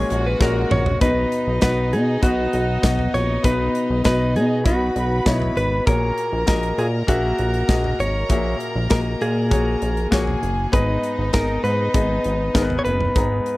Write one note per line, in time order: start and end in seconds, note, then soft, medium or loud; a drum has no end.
0.00 1.03 A#2 medium
0.00 0.40 G#3 medium
0.00 0.40 A#3 medium
0.00 0.40 C#4 medium
0.00 0.41 F#4 medium
0.00 1.03 G#4 medium
0.00 0.41 A#4 medium
0.00 0.27 C#5 medium
0.10 0.36 A#1 loud
0.10 1.00 F#4 medium
0.10 1.00 F#5 medium
0.10 hi-hat pedal medium
0.10 open hi-hat medium
0.27 0.42 B4 medium
0.40 0.66 A#1 loud
0.40 0.94 G#3 medium
0.40 0.94 A#3 medium
0.40 0.94 C#4 medium
0.40 0.95 F#4 medium
0.40 0.95 A#4 medium
0.40 0.84 A#4 medium
0.40 kick loud
0.40 snare medium
0.71 0.96 A#1 medium
0.71 1.01 C#5 medium
0.71 mid tom loud
0.86 floor tom medium
1.01 1.26 B1 medium
1.01 1.88 B2 medium
1.01 1.55 B3 medium
1.01 4.61 D#4 medium
1.01 1.55 D#4 medium
1.01 1.55 F#4 medium
1.01 1.61 B4 medium
1.01 4.61 D#5 medium
1.01 1.56 D#5 medium
1.01 kick loud
1.01 closed hi-hat medium
1.32 closed hi-hat medium
1.47 1.59 B1 medium
1.61 1.94 B1 medium
1.61 2.16 B3 medium
1.61 2.16 D#4 medium
1.61 2.16 F#4 medium
1.61 1.93 B4 medium
1.61 2.16 F#5 medium
1.61 kick medium
1.61 snare loud
1.61 closed hi-hat medium
1.93 2.18 B2 loud
1.93 2.23 G#4 medium
1.93 closed hi-hat medium
2.22 2.48 B1 medium
2.22 2.76 B3 medium
2.22 2.76 D#4 medium
2.22 2.77 F#4 medium
2.22 3.17 F#4 medium
2.22 2.77 B4 medium
2.22 kick loud
2.22 closed hi-hat medium
2.53 2.78 B1 medium
2.53 closed hi-hat medium
2.82 3.08 B1 medium
2.82 3.37 B3 medium
2.82 3.37 D#4 medium
2.82 3.37 F#4 medium
2.82 3.37 D#5 medium
2.82 kick medium
2.82 snare medium
2.82 closed hi-hat medium
2.99 floor tom medium
3.14 3.39 A#1 medium
3.14 3.42 C#5 medium
3.14 closed hi-hat medium
3.43 3.69 B1 medium
3.43 4.31 B2 medium
3.43 3.97 B3 medium
3.43 3.98 D#4 medium
3.43 3.98 F#4 medium
3.43 3.98 B4 medium
3.43 4.01 B4 medium
3.43 kick loud
3.43 closed hi-hat medium
3.75 closed hi-hat medium
3.90 4.02 B1 medium
4.04 4.37 B1 medium
4.04 4.58 B3 medium
4.04 4.58 D#4 medium
4.04 4.59 F#4 medium
4.04 4.34 B4 medium
4.04 4.59 D#5 medium
4.04 kick loud
4.04 snare medium
4.04 closed hi-hat medium
4.35 4.67 B2 medium
4.35 4.66 G#4 medium
4.35 closed hi-hat soft
4.64 4.90 B1 loud
4.64 5.19 B3 medium
4.64 5.19 D#4 medium
4.64 5.19 F#4 medium
4.64 5.33 F#4 medium
4.64 5.85 B4 medium
4.64 5.19 D#5 medium
4.64 5.85 B5 medium
4.64 kick loud
4.64 closed hi-hat medium
4.96 5.21 B1 medium
4.96 closed hi-hat medium
5.25 5.51 B1 medium
5.25 5.80 B3 medium
5.25 5.80 D#4 medium
5.25 5.80 F#4 medium
5.25 5.80 C#5 medium
5.25 kick medium
5.25 snare loud
5.25 closed hi-hat medium
5.33 5.60 E4 medium
5.42 floor tom medium
5.57 5.81 G#1 medium
5.57 5.87 B4 medium
5.57 closed hi-hat medium
5.86 6.12 A#1 medium
5.86 6.74 A#2 medium
5.86 6.40 A#3 medium
5.86 6.41 F#4 medium
5.86 6.41 G#4 medium
5.86 10.08 A#4 medium
5.86 6.47 A#4 medium
5.86 6.41 C#5 medium
5.86 10.08 A#5 medium
5.86 kick loud
5.86 closed hi-hat medium
6.18 closed hi-hat medium
6.32 6.45 A#1 medium
6.46 6.73 A#1 medium
6.46 7.01 A#3 medium
6.46 7.01 F#4 medium
6.46 7.01 G#4 medium
6.46 6.79 A#4 medium
6.46 7.02 D#5 medium
6.46 kick loud
6.46 snare loud
6.46 closed hi-hat medium
6.63 closed hi-hat soft
6.78 7.03 A#2 loud
6.78 6.87 G#4 medium
6.78 closed hi-hat soft
7.07 7.33 A#1 medium
7.07 7.62 A#3 medium
7.07 7.62 F#4 medium
7.07 8.03 F#4 medium
7.07 7.62 G#4 medium
7.07 7.62 E5 medium
7.07 kick loud
7.07 closed hi-hat medium
7.38 7.64 A#1 medium
7.38 closed hi-hat medium
7.54 closed hi-hat soft
7.68 7.94 A#1 loud
7.68 8.22 A#3 medium
7.68 8.23 F#4 medium
7.68 8.23 G#4 medium
7.68 8.23 D#5 medium
7.68 kick medium
7.68 snare medium
7.68 closed hi-hat medium
7.84 floor tom medium
8.00 8.25 G#1 medium
8.00 8.57 C#5 medium
8.00 closed hi-hat medium
8.29 8.55 A#1 medium
8.29 9.17 A#2 medium
8.29 8.83 A#3 medium
8.29 8.84 F#4 medium
8.29 8.84 G#4 medium
8.29 8.84 E5 medium
8.29 kick loud
8.29 closed hi-hat medium
8.60 closed hi-hat medium
8.75 8.88 A#1 loud
8.89 9.16 A#1 loud
8.89 9.44 A#3 medium
8.89 9.44 F#4 medium
8.89 9.44 G#4 medium
8.89 9.00 A#4 medium
8.89 9.45 D#5 medium
8.89 kick loud
8.89 snare loud
8.89 closed hi-hat medium
9.21 9.53 A#2 loud
9.21 10.39 G#4 medium
9.21 closed hi-hat medium
9.50 9.76 A#1 loud
9.50 10.05 A#3 medium
9.50 10.05 F#4 medium
9.50 10.05 G#4 medium
9.50 10.05 C#5 medium
9.50 kick loud
9.50 closed hi-hat medium
9.82 10.07 A#1 loud
9.82 closed hi-hat medium
9.97 closed hi-hat soft
10.11 10.37 A#1 loud
10.11 10.65 A#3 medium
10.11 10.66 F#4 medium
10.11 10.66 G#4 medium
10.11 10.72 G#4 medium
10.11 10.66 C#5 medium
10.11 10.72 G#5 medium
10.11 kick medium
10.11 snare loud
10.11 closed hi-hat medium
10.27 floor tom medium
10.43 10.68 F#1 medium
10.43 closed hi-hat medium
10.72 10.98 G#1 loud
10.72 11.60 G#2 medium
10.72 11.26 B3 medium
10.72 11.27 D#4 medium
10.72 13.12 D#4 medium
10.72 11.27 G#4 medium
10.72 11.33 B4 medium
10.72 13.12 D#5 medium
10.72 11.27 D#5 medium
10.72 kick loud
10.72 closed hi-hat medium
11.03 closed hi-hat medium
11.18 11.31 G#1 medium
11.33 11.59 G#1 medium
11.33 11.87 B3 medium
11.33 11.87 D#4 medium
11.33 11.88 G#4 medium
11.33 11.63 A#4 medium
11.33 11.88 D#5 medium
11.33 kick medium
11.33 snare loud
11.33 closed hi-hat medium
11.64 11.89 G#2 loud
11.64 12.78 B4 medium
11.64 closed hi-hat soft
11.94 12.19 G#1 loud
11.94 12.48 B3 medium
11.94 12.48 D#4 medium
11.94 12.48 G#4 medium
11.94 12.49 D#5 medium
11.94 kick loud
11.94 closed hi-hat medium
12.24 12.50 G#1 medium
12.24 closed hi-hat medium
12.54 12.80 G#1 medium
12.54 13.09 B3 medium
12.54 13.09 D#4 medium
12.54 13.09 G#4 medium
12.54 12.62 A#4 medium
12.54 kick medium
12.54 snare loud
12.54 closed hi-hat medium
12.62 13.13 B4 medium
12.70 floor tom medium
12.79 12.84 C#5 medium
12.85 13.11 F#1 medium
12.85 13.57 B4 medium
12.85 closed hi-hat medium
13.00 floor tom medium
13.15 13.41 G#1 medium
13.15 13.57 G#2 medium
13.15 13.57 B3 medium
13.15 13.57 D#4 medium
13.15 13.57 G#4 medium
13.15 13.57 A#5 medium
13.15 kick loud
13.15 closed hi-hat medium
13.46 closed hi-hat medium